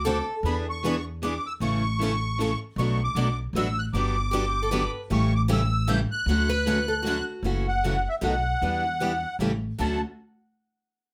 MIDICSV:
0, 0, Header, 1, 6, 480
1, 0, Start_track
1, 0, Key_signature, 2, "major"
1, 0, Tempo, 389358
1, 538, Time_signature, 3, 2, 24, 8
1, 13731, End_track
2, 0, Start_track
2, 0, Title_t, "Accordion"
2, 0, Program_c, 0, 21
2, 0, Note_on_c, 0, 86, 88
2, 323, Note_off_c, 0, 86, 0
2, 568, Note_on_c, 0, 83, 84
2, 693, Note_off_c, 0, 83, 0
2, 861, Note_on_c, 0, 85, 89
2, 1294, Note_off_c, 0, 85, 0
2, 1522, Note_on_c, 0, 86, 88
2, 1807, Note_on_c, 0, 88, 95
2, 1812, Note_off_c, 0, 86, 0
2, 1887, Note_off_c, 0, 88, 0
2, 2003, Note_on_c, 0, 85, 104
2, 3195, Note_off_c, 0, 85, 0
2, 3434, Note_on_c, 0, 85, 88
2, 3728, Note_off_c, 0, 85, 0
2, 3745, Note_on_c, 0, 86, 96
2, 4175, Note_off_c, 0, 86, 0
2, 4393, Note_on_c, 0, 88, 91
2, 4671, Note_on_c, 0, 90, 101
2, 4687, Note_off_c, 0, 88, 0
2, 4754, Note_off_c, 0, 90, 0
2, 4850, Note_on_c, 0, 86, 106
2, 6056, Note_off_c, 0, 86, 0
2, 6322, Note_on_c, 0, 85, 101
2, 6582, Note_off_c, 0, 85, 0
2, 6601, Note_on_c, 0, 86, 98
2, 6681, Note_off_c, 0, 86, 0
2, 6816, Note_on_c, 0, 88, 102
2, 7262, Note_on_c, 0, 91, 101
2, 7287, Note_off_c, 0, 88, 0
2, 7392, Note_off_c, 0, 91, 0
2, 7536, Note_on_c, 0, 90, 113
2, 8931, Note_off_c, 0, 90, 0
2, 9470, Note_on_c, 0, 78, 99
2, 9962, Note_off_c, 0, 78, 0
2, 9971, Note_on_c, 0, 76, 87
2, 10049, Note_off_c, 0, 76, 0
2, 10153, Note_on_c, 0, 78, 93
2, 11534, Note_off_c, 0, 78, 0
2, 12083, Note_on_c, 0, 81, 80
2, 12344, Note_off_c, 0, 81, 0
2, 13731, End_track
3, 0, Start_track
3, 0, Title_t, "Steel-string acoustic guitar"
3, 0, Program_c, 1, 25
3, 5703, Note_on_c, 1, 69, 92
3, 5797, Note_off_c, 1, 69, 0
3, 5808, Note_on_c, 1, 71, 98
3, 6170, Note_off_c, 1, 71, 0
3, 8006, Note_on_c, 1, 71, 107
3, 8461, Note_off_c, 1, 71, 0
3, 8483, Note_on_c, 1, 69, 92
3, 8545, Note_off_c, 1, 69, 0
3, 13731, End_track
4, 0, Start_track
4, 0, Title_t, "Steel-string acoustic guitar"
4, 0, Program_c, 2, 25
4, 73, Note_on_c, 2, 50, 94
4, 73, Note_on_c, 2, 57, 90
4, 76, Note_on_c, 2, 60, 100
4, 79, Note_on_c, 2, 66, 99
4, 82, Note_on_c, 2, 69, 107
4, 201, Note_off_c, 2, 50, 0
4, 201, Note_off_c, 2, 57, 0
4, 203, Note_off_c, 2, 60, 0
4, 204, Note_off_c, 2, 66, 0
4, 206, Note_off_c, 2, 69, 0
4, 549, Note_on_c, 2, 62, 68
4, 552, Note_on_c, 2, 52, 66
4, 552, Note_on_c, 2, 59, 73
4, 556, Note_on_c, 2, 68, 76
4, 560, Note_on_c, 2, 71, 73
4, 800, Note_off_c, 2, 62, 0
4, 802, Note_off_c, 2, 52, 0
4, 802, Note_off_c, 2, 59, 0
4, 804, Note_off_c, 2, 68, 0
4, 806, Note_off_c, 2, 71, 0
4, 1020, Note_on_c, 2, 52, 99
4, 1025, Note_on_c, 2, 59, 99
4, 1031, Note_on_c, 2, 62, 102
4, 1031, Note_on_c, 2, 68, 102
4, 1037, Note_on_c, 2, 71, 95
4, 1155, Note_off_c, 2, 52, 0
4, 1157, Note_off_c, 2, 59, 0
4, 1160, Note_off_c, 2, 62, 0
4, 1160, Note_off_c, 2, 68, 0
4, 1163, Note_off_c, 2, 71, 0
4, 1502, Note_on_c, 2, 59, 87
4, 1503, Note_on_c, 2, 52, 86
4, 1509, Note_on_c, 2, 62, 94
4, 1512, Note_on_c, 2, 68, 97
4, 1515, Note_on_c, 2, 71, 105
4, 1636, Note_off_c, 2, 52, 0
4, 1636, Note_off_c, 2, 59, 0
4, 1639, Note_off_c, 2, 62, 0
4, 1641, Note_off_c, 2, 68, 0
4, 1642, Note_off_c, 2, 71, 0
4, 1978, Note_on_c, 2, 52, 76
4, 1985, Note_on_c, 2, 61, 75
4, 1985, Note_on_c, 2, 69, 74
4, 1986, Note_on_c, 2, 57, 69
4, 1989, Note_on_c, 2, 64, 70
4, 2235, Note_off_c, 2, 52, 0
4, 2238, Note_off_c, 2, 61, 0
4, 2238, Note_off_c, 2, 69, 0
4, 2239, Note_off_c, 2, 57, 0
4, 2240, Note_off_c, 2, 64, 0
4, 2448, Note_on_c, 2, 52, 90
4, 2450, Note_on_c, 2, 57, 88
4, 2455, Note_on_c, 2, 61, 83
4, 2457, Note_on_c, 2, 69, 97
4, 2461, Note_on_c, 2, 64, 99
4, 2588, Note_off_c, 2, 52, 0
4, 2589, Note_off_c, 2, 57, 0
4, 2592, Note_off_c, 2, 61, 0
4, 2593, Note_off_c, 2, 69, 0
4, 2595, Note_off_c, 2, 64, 0
4, 2934, Note_on_c, 2, 52, 93
4, 2938, Note_on_c, 2, 61, 96
4, 2942, Note_on_c, 2, 57, 87
4, 2945, Note_on_c, 2, 64, 102
4, 2952, Note_on_c, 2, 69, 105
4, 3071, Note_off_c, 2, 52, 0
4, 3073, Note_off_c, 2, 61, 0
4, 3075, Note_off_c, 2, 57, 0
4, 3077, Note_off_c, 2, 64, 0
4, 3080, Note_off_c, 2, 69, 0
4, 3420, Note_on_c, 2, 47, 64
4, 3429, Note_on_c, 2, 54, 66
4, 3431, Note_on_c, 2, 57, 67
4, 3435, Note_on_c, 2, 71, 74
4, 3436, Note_on_c, 2, 62, 76
4, 3441, Note_on_c, 2, 66, 65
4, 3675, Note_off_c, 2, 47, 0
4, 3680, Note_off_c, 2, 54, 0
4, 3680, Note_off_c, 2, 57, 0
4, 3682, Note_off_c, 2, 71, 0
4, 3683, Note_off_c, 2, 62, 0
4, 3685, Note_off_c, 2, 66, 0
4, 3888, Note_on_c, 2, 54, 90
4, 3890, Note_on_c, 2, 47, 95
4, 3894, Note_on_c, 2, 57, 89
4, 3898, Note_on_c, 2, 71, 92
4, 3901, Note_on_c, 2, 62, 98
4, 3903, Note_on_c, 2, 66, 105
4, 4028, Note_off_c, 2, 54, 0
4, 4029, Note_off_c, 2, 47, 0
4, 4031, Note_off_c, 2, 57, 0
4, 4033, Note_off_c, 2, 71, 0
4, 4034, Note_off_c, 2, 62, 0
4, 4035, Note_off_c, 2, 66, 0
4, 4373, Note_on_c, 2, 47, 89
4, 4379, Note_on_c, 2, 54, 84
4, 4379, Note_on_c, 2, 57, 98
4, 4379, Note_on_c, 2, 66, 102
4, 4380, Note_on_c, 2, 71, 96
4, 4386, Note_on_c, 2, 62, 96
4, 4510, Note_off_c, 2, 47, 0
4, 4513, Note_off_c, 2, 54, 0
4, 4513, Note_off_c, 2, 57, 0
4, 4513, Note_off_c, 2, 66, 0
4, 4514, Note_off_c, 2, 71, 0
4, 4516, Note_off_c, 2, 62, 0
4, 4874, Note_on_c, 2, 50, 75
4, 4874, Note_on_c, 2, 54, 70
4, 4877, Note_on_c, 2, 59, 68
4, 4877, Note_on_c, 2, 67, 80
4, 4878, Note_on_c, 2, 62, 74
4, 5121, Note_off_c, 2, 50, 0
4, 5121, Note_off_c, 2, 54, 0
4, 5123, Note_off_c, 2, 59, 0
4, 5123, Note_off_c, 2, 62, 0
4, 5123, Note_off_c, 2, 67, 0
4, 5340, Note_on_c, 2, 50, 99
4, 5350, Note_on_c, 2, 54, 96
4, 5350, Note_on_c, 2, 59, 99
4, 5351, Note_on_c, 2, 62, 92
4, 5356, Note_on_c, 2, 67, 106
4, 5473, Note_off_c, 2, 50, 0
4, 5478, Note_off_c, 2, 54, 0
4, 5478, Note_off_c, 2, 59, 0
4, 5479, Note_off_c, 2, 62, 0
4, 5481, Note_off_c, 2, 67, 0
4, 5808, Note_on_c, 2, 50, 96
4, 5815, Note_on_c, 2, 54, 93
4, 5816, Note_on_c, 2, 59, 107
4, 5818, Note_on_c, 2, 62, 99
4, 5823, Note_on_c, 2, 67, 106
4, 5947, Note_off_c, 2, 50, 0
4, 5950, Note_off_c, 2, 54, 0
4, 5951, Note_off_c, 2, 59, 0
4, 5952, Note_off_c, 2, 62, 0
4, 5954, Note_off_c, 2, 67, 0
4, 6285, Note_on_c, 2, 52, 72
4, 6285, Note_on_c, 2, 55, 66
4, 6290, Note_on_c, 2, 64, 79
4, 6291, Note_on_c, 2, 61, 77
4, 6293, Note_on_c, 2, 69, 83
4, 6546, Note_off_c, 2, 52, 0
4, 6546, Note_off_c, 2, 55, 0
4, 6548, Note_off_c, 2, 64, 0
4, 6549, Note_off_c, 2, 61, 0
4, 6550, Note_off_c, 2, 69, 0
4, 6774, Note_on_c, 2, 55, 97
4, 6776, Note_on_c, 2, 64, 106
4, 6779, Note_on_c, 2, 52, 97
4, 6780, Note_on_c, 2, 69, 102
4, 6783, Note_on_c, 2, 61, 90
4, 6909, Note_off_c, 2, 55, 0
4, 6910, Note_off_c, 2, 64, 0
4, 6912, Note_off_c, 2, 52, 0
4, 6912, Note_off_c, 2, 69, 0
4, 6914, Note_off_c, 2, 61, 0
4, 7249, Note_on_c, 2, 61, 101
4, 7250, Note_on_c, 2, 52, 98
4, 7250, Note_on_c, 2, 55, 101
4, 7255, Note_on_c, 2, 64, 101
4, 7255, Note_on_c, 2, 69, 107
4, 7387, Note_off_c, 2, 52, 0
4, 7387, Note_off_c, 2, 55, 0
4, 7387, Note_off_c, 2, 61, 0
4, 7389, Note_off_c, 2, 64, 0
4, 7389, Note_off_c, 2, 69, 0
4, 7740, Note_on_c, 2, 50, 70
4, 7746, Note_on_c, 2, 57, 70
4, 7750, Note_on_c, 2, 61, 72
4, 7751, Note_on_c, 2, 66, 77
4, 7752, Note_on_c, 2, 69, 72
4, 7993, Note_off_c, 2, 50, 0
4, 7996, Note_off_c, 2, 57, 0
4, 7998, Note_off_c, 2, 61, 0
4, 7998, Note_off_c, 2, 66, 0
4, 7999, Note_off_c, 2, 69, 0
4, 8207, Note_on_c, 2, 50, 93
4, 8210, Note_on_c, 2, 57, 94
4, 8211, Note_on_c, 2, 66, 104
4, 8214, Note_on_c, 2, 61, 106
4, 8222, Note_on_c, 2, 69, 114
4, 8345, Note_off_c, 2, 50, 0
4, 8346, Note_off_c, 2, 57, 0
4, 8347, Note_off_c, 2, 66, 0
4, 8348, Note_off_c, 2, 61, 0
4, 8352, Note_off_c, 2, 69, 0
4, 8678, Note_on_c, 2, 57, 93
4, 8683, Note_on_c, 2, 50, 102
4, 8684, Note_on_c, 2, 61, 98
4, 8687, Note_on_c, 2, 66, 102
4, 8694, Note_on_c, 2, 69, 99
4, 8820, Note_off_c, 2, 57, 0
4, 8823, Note_off_c, 2, 50, 0
4, 8823, Note_off_c, 2, 61, 0
4, 8825, Note_off_c, 2, 66, 0
4, 8829, Note_off_c, 2, 69, 0
4, 9173, Note_on_c, 2, 54, 61
4, 9184, Note_on_c, 2, 61, 66
4, 9184, Note_on_c, 2, 64, 64
4, 9188, Note_on_c, 2, 69, 74
4, 9429, Note_off_c, 2, 54, 0
4, 9434, Note_off_c, 2, 61, 0
4, 9435, Note_off_c, 2, 64, 0
4, 9437, Note_off_c, 2, 69, 0
4, 9657, Note_on_c, 2, 61, 85
4, 9659, Note_on_c, 2, 54, 82
4, 9668, Note_on_c, 2, 69, 99
4, 9670, Note_on_c, 2, 64, 90
4, 9790, Note_off_c, 2, 61, 0
4, 9791, Note_off_c, 2, 54, 0
4, 9796, Note_off_c, 2, 69, 0
4, 9797, Note_off_c, 2, 64, 0
4, 10140, Note_on_c, 2, 47, 88
4, 10140, Note_on_c, 2, 51, 90
4, 10141, Note_on_c, 2, 63, 89
4, 10142, Note_on_c, 2, 54, 91
4, 10142, Note_on_c, 2, 59, 102
4, 10152, Note_on_c, 2, 69, 105
4, 10272, Note_off_c, 2, 47, 0
4, 10272, Note_off_c, 2, 51, 0
4, 10272, Note_off_c, 2, 63, 0
4, 10273, Note_off_c, 2, 54, 0
4, 10273, Note_off_c, 2, 59, 0
4, 10278, Note_off_c, 2, 69, 0
4, 10629, Note_on_c, 2, 52, 62
4, 10632, Note_on_c, 2, 62, 73
4, 10632, Note_on_c, 2, 64, 68
4, 10633, Note_on_c, 2, 55, 70
4, 10645, Note_on_c, 2, 71, 80
4, 10878, Note_off_c, 2, 52, 0
4, 10879, Note_off_c, 2, 62, 0
4, 10879, Note_off_c, 2, 64, 0
4, 10880, Note_off_c, 2, 55, 0
4, 10886, Note_off_c, 2, 71, 0
4, 11105, Note_on_c, 2, 52, 90
4, 11105, Note_on_c, 2, 62, 94
4, 11106, Note_on_c, 2, 71, 95
4, 11108, Note_on_c, 2, 55, 87
4, 11112, Note_on_c, 2, 64, 86
4, 11235, Note_off_c, 2, 52, 0
4, 11235, Note_off_c, 2, 62, 0
4, 11235, Note_off_c, 2, 71, 0
4, 11236, Note_off_c, 2, 55, 0
4, 11238, Note_off_c, 2, 64, 0
4, 11586, Note_on_c, 2, 55, 93
4, 11588, Note_on_c, 2, 52, 89
4, 11594, Note_on_c, 2, 61, 92
4, 11595, Note_on_c, 2, 64, 98
4, 11603, Note_on_c, 2, 69, 87
4, 11716, Note_off_c, 2, 55, 0
4, 11717, Note_off_c, 2, 52, 0
4, 11720, Note_off_c, 2, 61, 0
4, 11720, Note_off_c, 2, 64, 0
4, 11724, Note_off_c, 2, 69, 0
4, 12070, Note_on_c, 2, 50, 72
4, 12079, Note_on_c, 2, 61, 86
4, 12083, Note_on_c, 2, 57, 80
4, 12086, Note_on_c, 2, 69, 82
4, 12089, Note_on_c, 2, 66, 86
4, 12298, Note_off_c, 2, 50, 0
4, 12302, Note_off_c, 2, 61, 0
4, 12304, Note_off_c, 2, 57, 0
4, 12306, Note_off_c, 2, 69, 0
4, 12307, Note_off_c, 2, 66, 0
4, 13731, End_track
5, 0, Start_track
5, 0, Title_t, "Steel-string acoustic guitar"
5, 0, Program_c, 3, 25
5, 1989, Note_on_c, 3, 49, 77
5, 2240, Note_off_c, 3, 49, 0
5, 2484, Note_on_c, 3, 49, 93
5, 2606, Note_off_c, 3, 49, 0
5, 2963, Note_on_c, 3, 49, 86
5, 3086, Note_off_c, 3, 49, 0
5, 6295, Note_on_c, 3, 49, 73
5, 6298, Note_on_c, 3, 57, 73
5, 6308, Note_on_c, 3, 67, 74
5, 6551, Note_off_c, 3, 49, 0
5, 6553, Note_off_c, 3, 57, 0
5, 6557, Note_off_c, 3, 67, 0
5, 6763, Note_on_c, 3, 49, 92
5, 6770, Note_on_c, 3, 57, 98
5, 6773, Note_on_c, 3, 67, 95
5, 6903, Note_off_c, 3, 49, 0
5, 6907, Note_off_c, 3, 57, 0
5, 6908, Note_off_c, 3, 67, 0
5, 7243, Note_on_c, 3, 49, 98
5, 7249, Note_on_c, 3, 57, 96
5, 7258, Note_on_c, 3, 67, 106
5, 7383, Note_off_c, 3, 49, 0
5, 7386, Note_off_c, 3, 57, 0
5, 7391, Note_off_c, 3, 67, 0
5, 7749, Note_on_c, 3, 54, 71
5, 7997, Note_off_c, 3, 54, 0
5, 8226, Note_on_c, 3, 54, 91
5, 8355, Note_off_c, 3, 54, 0
5, 8711, Note_on_c, 3, 54, 89
5, 8837, Note_off_c, 3, 54, 0
5, 9175, Note_on_c, 3, 52, 64
5, 9177, Note_on_c, 3, 49, 65
5, 9184, Note_on_c, 3, 57, 70
5, 9193, Note_on_c, 3, 66, 73
5, 9430, Note_off_c, 3, 52, 0
5, 9431, Note_off_c, 3, 49, 0
5, 9435, Note_off_c, 3, 57, 0
5, 9439, Note_off_c, 3, 66, 0
5, 9669, Note_on_c, 3, 49, 80
5, 9673, Note_on_c, 3, 52, 81
5, 9674, Note_on_c, 3, 66, 87
5, 9678, Note_on_c, 3, 57, 82
5, 9796, Note_off_c, 3, 49, 0
5, 9798, Note_off_c, 3, 52, 0
5, 9799, Note_off_c, 3, 66, 0
5, 9801, Note_off_c, 3, 57, 0
5, 10128, Note_on_c, 3, 57, 91
5, 10142, Note_on_c, 3, 66, 87
5, 10266, Note_off_c, 3, 57, 0
5, 10273, Note_off_c, 3, 66, 0
5, 10633, Note_on_c, 3, 59, 66
5, 10642, Note_on_c, 3, 67, 75
5, 10880, Note_off_c, 3, 59, 0
5, 10885, Note_off_c, 3, 67, 0
5, 11106, Note_on_c, 3, 59, 88
5, 11115, Note_on_c, 3, 67, 96
5, 11235, Note_off_c, 3, 59, 0
5, 11240, Note_off_c, 3, 67, 0
5, 11588, Note_on_c, 3, 49, 79
5, 11601, Note_on_c, 3, 57, 78
5, 11605, Note_on_c, 3, 67, 91
5, 11717, Note_off_c, 3, 49, 0
5, 11723, Note_off_c, 3, 57, 0
5, 11725, Note_off_c, 3, 67, 0
5, 12064, Note_on_c, 3, 54, 75
5, 12295, Note_off_c, 3, 54, 0
5, 13731, End_track
6, 0, Start_track
6, 0, Title_t, "Upright bass"
6, 0, Program_c, 4, 32
6, 0, Note_on_c, 4, 38, 95
6, 244, Note_off_c, 4, 38, 0
6, 530, Note_on_c, 4, 40, 95
6, 1685, Note_off_c, 4, 40, 0
6, 1976, Note_on_c, 4, 33, 96
6, 3128, Note_off_c, 4, 33, 0
6, 3405, Note_on_c, 4, 35, 98
6, 3793, Note_off_c, 4, 35, 0
6, 3882, Note_on_c, 4, 35, 85
6, 4295, Note_off_c, 4, 35, 0
6, 4352, Note_on_c, 4, 33, 85
6, 4769, Note_off_c, 4, 33, 0
6, 4848, Note_on_c, 4, 31, 98
6, 6002, Note_off_c, 4, 31, 0
6, 6295, Note_on_c, 4, 33, 103
6, 7445, Note_off_c, 4, 33, 0
6, 7717, Note_on_c, 4, 38, 101
6, 8874, Note_off_c, 4, 38, 0
6, 9155, Note_on_c, 4, 30, 90
6, 9929, Note_off_c, 4, 30, 0
6, 10130, Note_on_c, 4, 35, 87
6, 10515, Note_off_c, 4, 35, 0
6, 10623, Note_on_c, 4, 40, 93
6, 11387, Note_off_c, 4, 40, 0
6, 11575, Note_on_c, 4, 33, 87
6, 11959, Note_off_c, 4, 33, 0
6, 12072, Note_on_c, 4, 38, 83
6, 12338, Note_off_c, 4, 38, 0
6, 13731, End_track
0, 0, End_of_file